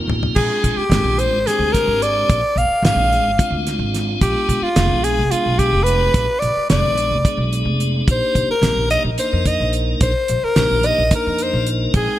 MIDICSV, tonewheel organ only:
0, 0, Header, 1, 2, 480
1, 0, Start_track
1, 0, Tempo, 551471
1, 312, Time_signature, 7, 3, 24, 8
1, 10610, End_track
2, 0, Start_track
2, 0, Title_t, "Tonewheel organ"
2, 0, Program_c, 0, 16
2, 0, Note_on_c, 0, 58, 73
2, 0, Note_on_c, 0, 60, 68
2, 0, Note_on_c, 0, 63, 66
2, 0, Note_on_c, 0, 65, 77
2, 318, Note_off_c, 0, 58, 0
2, 319, Note_off_c, 0, 60, 0
2, 319, Note_off_c, 0, 65, 0
2, 320, Note_off_c, 0, 63, 0
2, 332, Note_on_c, 0, 56, 74
2, 332, Note_on_c, 0, 62, 65
2, 333, Note_on_c, 0, 60, 68
2, 334, Note_on_c, 0, 65, 79
2, 733, Note_off_c, 0, 56, 0
2, 733, Note_off_c, 0, 62, 0
2, 734, Note_off_c, 0, 60, 0
2, 734, Note_off_c, 0, 65, 0
2, 809, Note_on_c, 0, 60, 58
2, 810, Note_on_c, 0, 56, 59
2, 811, Note_on_c, 0, 62, 56
2, 812, Note_on_c, 0, 65, 68
2, 1212, Note_off_c, 0, 56, 0
2, 1212, Note_off_c, 0, 60, 0
2, 1213, Note_off_c, 0, 62, 0
2, 1213, Note_off_c, 0, 65, 0
2, 1273, Note_on_c, 0, 56, 61
2, 1276, Note_on_c, 0, 60, 57
2, 1278, Note_on_c, 0, 62, 58
2, 1279, Note_on_c, 0, 67, 69
2, 2095, Note_off_c, 0, 56, 0
2, 2096, Note_off_c, 0, 60, 0
2, 2097, Note_off_c, 0, 62, 0
2, 2098, Note_off_c, 0, 67, 0
2, 2476, Note_on_c, 0, 60, 59
2, 2477, Note_on_c, 0, 68, 72
2, 2478, Note_on_c, 0, 56, 63
2, 2479, Note_on_c, 0, 62, 60
2, 2885, Note_off_c, 0, 60, 0
2, 2886, Note_off_c, 0, 56, 0
2, 2886, Note_off_c, 0, 62, 0
2, 2886, Note_off_c, 0, 68, 0
2, 2944, Note_on_c, 0, 60, 58
2, 2945, Note_on_c, 0, 56, 68
2, 2946, Note_on_c, 0, 62, 59
2, 2947, Note_on_c, 0, 65, 73
2, 3662, Note_off_c, 0, 62, 0
2, 3665, Note_off_c, 0, 56, 0
2, 3665, Note_off_c, 0, 65, 0
2, 3667, Note_off_c, 0, 60, 0
2, 3673, Note_on_c, 0, 59, 69
2, 3673, Note_on_c, 0, 62, 67
2, 3675, Note_on_c, 0, 56, 76
2, 3676, Note_on_c, 0, 65, 87
2, 4083, Note_off_c, 0, 59, 0
2, 4083, Note_off_c, 0, 62, 0
2, 4085, Note_off_c, 0, 56, 0
2, 4085, Note_off_c, 0, 65, 0
2, 4140, Note_on_c, 0, 59, 62
2, 4142, Note_on_c, 0, 62, 59
2, 4145, Note_on_c, 0, 56, 64
2, 4149, Note_on_c, 0, 68, 72
2, 4557, Note_off_c, 0, 59, 0
2, 4558, Note_off_c, 0, 62, 0
2, 4559, Note_off_c, 0, 56, 0
2, 4561, Note_off_c, 0, 68, 0
2, 4629, Note_on_c, 0, 56, 66
2, 4630, Note_on_c, 0, 62, 61
2, 4632, Note_on_c, 0, 59, 58
2, 4632, Note_on_c, 0, 68, 71
2, 5453, Note_off_c, 0, 56, 0
2, 5453, Note_off_c, 0, 62, 0
2, 5454, Note_off_c, 0, 59, 0
2, 5454, Note_off_c, 0, 68, 0
2, 5841, Note_on_c, 0, 56, 61
2, 5842, Note_on_c, 0, 59, 58
2, 5842, Note_on_c, 0, 62, 59
2, 5842, Note_on_c, 0, 68, 70
2, 6248, Note_off_c, 0, 56, 0
2, 6248, Note_off_c, 0, 59, 0
2, 6248, Note_off_c, 0, 62, 0
2, 6248, Note_off_c, 0, 68, 0
2, 6317, Note_on_c, 0, 62, 58
2, 6318, Note_on_c, 0, 56, 60
2, 6318, Note_on_c, 0, 59, 57
2, 6322, Note_on_c, 0, 68, 71
2, 7028, Note_off_c, 0, 62, 0
2, 7030, Note_on_c, 0, 58, 74
2, 7033, Note_on_c, 0, 63, 69
2, 7035, Note_off_c, 0, 56, 0
2, 7035, Note_off_c, 0, 59, 0
2, 7037, Note_off_c, 0, 68, 0
2, 7038, Note_on_c, 0, 62, 69
2, 7039, Note_on_c, 0, 67, 79
2, 7442, Note_off_c, 0, 58, 0
2, 7444, Note_off_c, 0, 63, 0
2, 7446, Note_off_c, 0, 62, 0
2, 7447, Note_off_c, 0, 67, 0
2, 7515, Note_on_c, 0, 67, 66
2, 7516, Note_on_c, 0, 63, 59
2, 7517, Note_on_c, 0, 62, 59
2, 7518, Note_on_c, 0, 58, 63
2, 7925, Note_off_c, 0, 63, 0
2, 7925, Note_off_c, 0, 67, 0
2, 7926, Note_off_c, 0, 58, 0
2, 7926, Note_off_c, 0, 62, 0
2, 7993, Note_on_c, 0, 58, 65
2, 7993, Note_on_c, 0, 62, 60
2, 7996, Note_on_c, 0, 63, 61
2, 7996, Note_on_c, 0, 70, 73
2, 8815, Note_off_c, 0, 58, 0
2, 8816, Note_off_c, 0, 62, 0
2, 8817, Note_off_c, 0, 63, 0
2, 8817, Note_off_c, 0, 70, 0
2, 9192, Note_on_c, 0, 62, 63
2, 9194, Note_on_c, 0, 63, 61
2, 9195, Note_on_c, 0, 58, 65
2, 9196, Note_on_c, 0, 67, 73
2, 9604, Note_off_c, 0, 62, 0
2, 9604, Note_off_c, 0, 63, 0
2, 9605, Note_off_c, 0, 58, 0
2, 9606, Note_off_c, 0, 67, 0
2, 9676, Note_on_c, 0, 62, 58
2, 9678, Note_on_c, 0, 58, 67
2, 9684, Note_on_c, 0, 70, 74
2, 9685, Note_on_c, 0, 63, 60
2, 10382, Note_off_c, 0, 63, 0
2, 10392, Note_on_c, 0, 63, 66
2, 10394, Note_off_c, 0, 62, 0
2, 10394, Note_on_c, 0, 79, 84
2, 10395, Note_off_c, 0, 58, 0
2, 10395, Note_on_c, 0, 56, 74
2, 10395, Note_on_c, 0, 60, 71
2, 10398, Note_off_c, 0, 70, 0
2, 10610, Note_off_c, 0, 56, 0
2, 10610, Note_off_c, 0, 60, 0
2, 10610, Note_off_c, 0, 63, 0
2, 10610, Note_off_c, 0, 79, 0
2, 10610, End_track
0, 0, End_of_file